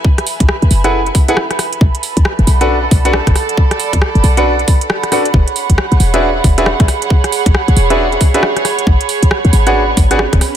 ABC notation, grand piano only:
X:1
M:4/4
L:1/16
Q:"Swing 16ths" 1/4=136
K:Bdor
V:1 name="Grand piano"
z6 z [EGABf] z3 [EGABf] z4 | z6 z [DFABf] z3 [DFABf] z4 | z6 z [DFABf] z6 [DFABf] z | z6 z [DFGBe] z3 [DFGBe] z4 |
z6 z [DFGBe] z3 [DFGBe] z4 | z6 z [DFGBf] z3 [DFGBf] z4 |]